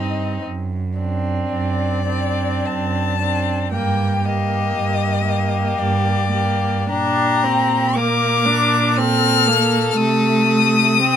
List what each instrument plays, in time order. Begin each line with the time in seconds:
Already playing: cello G2, viola C4, violin D#4 D#5
0.44 cello F#2
0.98 viola C4, violin D4
1.50 cello F#2, violin D5
2.07 viola C4, violin D4
2.66 cello F#2, violin A5
3.21 viola C4, violin D4
3.72 cello G2, viola A#3, violin G4 G5
4.25 viola A#3, violin G4 D#5
4.76 cello G2
5.26 viola A#3, violin G4
5.77 cello G2, violin D5
6.32 viola A#3, violin G4
6.89 cello A#2, viola D4, violin G4 A#5
7.44 viola C4
7.96 viola A#3, violin A#4 D6
8.46 viola D4
8.95 viola C4, violin A4 F6
9.48 viola A#3
9.91 violin F6
9.96 cello C3, viola A3, violin D#6
11.01 viola C4, violin G4